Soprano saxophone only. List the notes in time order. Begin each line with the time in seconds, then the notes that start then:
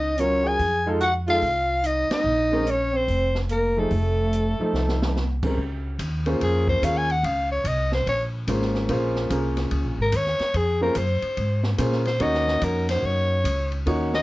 Already playing: D#5
0.20 C#5
0.47 G#5
1.03 F#5
1.30 F5
1.86 D#5
2.13 D#5
2.70 C#5
2.96 C5
3.52 A#4
3.79 A4
6.43 G#4
6.69 C5
6.85 F5
6.97 G#5
7.11 F#5
7.25 F5
7.51 C#5
7.67 D#5
7.94 C5
8.09 C#5
10.02 A#4
10.16 C#5
10.57 G#4
10.83 A#4
10.98 C5
12.07 C5
12.22 D#5
12.64 A#4
12.90 C5
13.06 C#5
14.15 D#5